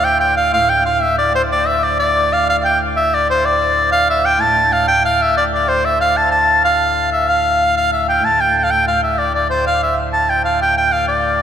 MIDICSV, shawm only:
0, 0, Header, 1, 2, 480
1, 0, Start_track
1, 0, Key_signature, -1, "minor"
1, 0, Tempo, 320342
1, 820, Time_signature, 6, 3, 24, 8
1, 8976, Tempo, 316957
1, 17199, End_track
2, 0, Start_track
2, 0, Title_t, "Shawm"
2, 0, Program_c, 0, 111
2, 69, Note_on_c, 0, 79, 97
2, 297, Note_off_c, 0, 79, 0
2, 306, Note_on_c, 0, 79, 90
2, 537, Note_off_c, 0, 79, 0
2, 546, Note_on_c, 0, 77, 83
2, 785, Note_off_c, 0, 77, 0
2, 806, Note_on_c, 0, 77, 98
2, 1039, Note_on_c, 0, 79, 88
2, 1062, Note_off_c, 0, 77, 0
2, 1278, Note_off_c, 0, 79, 0
2, 1287, Note_on_c, 0, 77, 82
2, 1527, Note_on_c, 0, 76, 93
2, 1549, Note_off_c, 0, 77, 0
2, 1767, Note_off_c, 0, 76, 0
2, 1776, Note_on_c, 0, 74, 88
2, 2003, Note_off_c, 0, 74, 0
2, 2026, Note_on_c, 0, 72, 85
2, 2134, Note_off_c, 0, 72, 0
2, 2274, Note_on_c, 0, 74, 95
2, 2505, Note_on_c, 0, 76, 84
2, 2528, Note_off_c, 0, 74, 0
2, 2751, Note_on_c, 0, 74, 80
2, 2774, Note_off_c, 0, 76, 0
2, 2978, Note_off_c, 0, 74, 0
2, 2987, Note_on_c, 0, 74, 88
2, 3491, Note_on_c, 0, 77, 86
2, 3514, Note_off_c, 0, 74, 0
2, 3720, Note_off_c, 0, 77, 0
2, 3742, Note_on_c, 0, 77, 95
2, 3842, Note_off_c, 0, 77, 0
2, 3965, Note_on_c, 0, 79, 86
2, 4180, Note_off_c, 0, 79, 0
2, 4447, Note_on_c, 0, 76, 98
2, 4706, Note_on_c, 0, 74, 87
2, 4729, Note_off_c, 0, 76, 0
2, 4927, Note_off_c, 0, 74, 0
2, 4948, Note_on_c, 0, 72, 84
2, 5176, Note_on_c, 0, 74, 80
2, 5199, Note_off_c, 0, 72, 0
2, 5862, Note_off_c, 0, 74, 0
2, 5871, Note_on_c, 0, 77, 103
2, 6092, Note_off_c, 0, 77, 0
2, 6144, Note_on_c, 0, 76, 95
2, 6374, Note_on_c, 0, 79, 96
2, 6396, Note_off_c, 0, 76, 0
2, 6601, Note_on_c, 0, 81, 99
2, 6624, Note_off_c, 0, 79, 0
2, 7082, Note_on_c, 0, 77, 85
2, 7105, Note_off_c, 0, 81, 0
2, 7300, Note_off_c, 0, 77, 0
2, 7309, Note_on_c, 0, 79, 100
2, 7528, Note_off_c, 0, 79, 0
2, 7568, Note_on_c, 0, 77, 91
2, 7819, Note_on_c, 0, 76, 89
2, 7841, Note_off_c, 0, 77, 0
2, 8039, Note_off_c, 0, 76, 0
2, 8053, Note_on_c, 0, 74, 91
2, 8153, Note_off_c, 0, 74, 0
2, 8305, Note_on_c, 0, 74, 77
2, 8517, Note_on_c, 0, 72, 81
2, 8540, Note_off_c, 0, 74, 0
2, 8765, Note_on_c, 0, 76, 93
2, 8788, Note_off_c, 0, 72, 0
2, 8990, Note_off_c, 0, 76, 0
2, 9002, Note_on_c, 0, 77, 93
2, 9246, Note_on_c, 0, 81, 89
2, 9269, Note_off_c, 0, 77, 0
2, 9461, Note_off_c, 0, 81, 0
2, 9470, Note_on_c, 0, 81, 94
2, 9913, Note_off_c, 0, 81, 0
2, 9972, Note_on_c, 0, 77, 82
2, 10629, Note_off_c, 0, 77, 0
2, 10693, Note_on_c, 0, 76, 83
2, 10937, Note_on_c, 0, 77, 89
2, 10960, Note_off_c, 0, 76, 0
2, 11642, Note_off_c, 0, 77, 0
2, 11666, Note_on_c, 0, 77, 96
2, 11870, Note_off_c, 0, 77, 0
2, 11906, Note_on_c, 0, 76, 76
2, 12110, Note_off_c, 0, 76, 0
2, 12155, Note_on_c, 0, 79, 80
2, 12394, Note_on_c, 0, 81, 90
2, 12417, Note_off_c, 0, 79, 0
2, 12636, Note_on_c, 0, 79, 80
2, 12659, Note_off_c, 0, 81, 0
2, 12851, Note_off_c, 0, 79, 0
2, 12888, Note_on_c, 0, 79, 63
2, 12982, Note_on_c, 0, 77, 88
2, 13005, Note_off_c, 0, 79, 0
2, 13090, Note_on_c, 0, 79, 93
2, 13113, Note_off_c, 0, 77, 0
2, 13318, Note_off_c, 0, 79, 0
2, 13347, Note_on_c, 0, 77, 80
2, 13551, Note_off_c, 0, 77, 0
2, 13586, Note_on_c, 0, 76, 74
2, 13814, Note_on_c, 0, 74, 84
2, 13837, Note_off_c, 0, 76, 0
2, 14039, Note_off_c, 0, 74, 0
2, 14062, Note_on_c, 0, 74, 73
2, 14268, Note_off_c, 0, 74, 0
2, 14295, Note_on_c, 0, 72, 70
2, 14504, Note_off_c, 0, 72, 0
2, 14541, Note_on_c, 0, 77, 87
2, 14747, Note_off_c, 0, 77, 0
2, 14791, Note_on_c, 0, 76, 78
2, 14992, Note_off_c, 0, 76, 0
2, 15246, Note_on_c, 0, 81, 89
2, 15497, Note_on_c, 0, 79, 80
2, 15520, Note_off_c, 0, 81, 0
2, 15719, Note_off_c, 0, 79, 0
2, 15727, Note_on_c, 0, 77, 75
2, 15938, Note_off_c, 0, 77, 0
2, 15986, Note_on_c, 0, 79, 93
2, 16187, Note_off_c, 0, 79, 0
2, 16221, Note_on_c, 0, 79, 88
2, 16448, Note_on_c, 0, 77, 82
2, 16471, Note_off_c, 0, 79, 0
2, 16672, Note_off_c, 0, 77, 0
2, 16684, Note_on_c, 0, 74, 72
2, 17199, Note_off_c, 0, 74, 0
2, 17199, End_track
0, 0, End_of_file